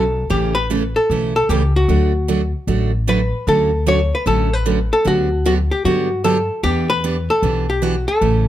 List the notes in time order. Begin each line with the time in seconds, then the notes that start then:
Already playing: B1 A4
0.30 A1 C#3 E3 A3 C#4 G4 A4
0.55 B4
0.70 C#3 E3 A3 C#4 A4
0.96 A4
1.10 B1 C#3 E3 A3 C#4 A4
1.36 A4
1.49 C#2 C#3 E3 A3 C#4 G4 A4
1.76 F#4
1.88 D2 D3 F#3 A3 D4 F#4
2.28 D3 F#3 A3 D4 F#4
2.67 A1 D3 F#3 A3 D4 F#4
3.07 D3 F#3 A3 D4 F#4 B4
3.47 D2 D3 F#3 A3 C#4 F#4 A4
3.86 D3 F#3 A3 C#4 F#4 C#5
4.15 B4
4.26 A1 D3 F#3 A3 C#4 F#4 A4
4.53 B4
4.66 D3 F#3 A3 C#4 F#4
4.93 A4
5.05 D2 D3 F#3 B3 D4 F#4 G4
5.46 D3 F#3 B3 D4 F#4 G4
5.71 G4
5.85 G2 D3 F#3 B3 D4 F#4 G4
6.24 D3 F#3 B3 D4 G4 A4
6.63 E2 E3 B3 D4 G4
6.90 B4
7.04 E3 B3 D4 G4
7.30 A4
7.42 B1 E3 B3 D4 G4
7.70 G4
7.82 E3 B3 D4 F#4 G4
8.08 A4
8.21 A1 C#3 E3 A3 C#4 A4